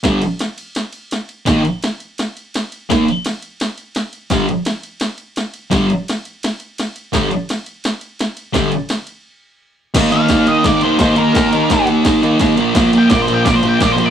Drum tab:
CC |--------|--------|--------|--------|
RD |xxxxxxxx|xxxxxxxx|xxxxxxxx|xxxxxxxx|
SD |o-o-o-o-|o-o-o-o-|o-o-o-o-|o-o-o-o-|
BD |o-------|o-------|o-------|o-------|

CC |--------|--------|--------|x-------|
RD |xxxxxxxx|xxxxxxxx|xxxx----|xxxxxxxx|
SD |o-o-o-o-|o-o-o-o-|o-o-----|o-o-o-o-|
BD |o-------|o-------|o-------|o-o-o-o-|

CC |--------|--------|
RD |xxxxxxxx|xxxxxxxx|
SD |o-o-o-o-|o-o-o-o-|
BD |o-o-o-o-|o-o-o-o-|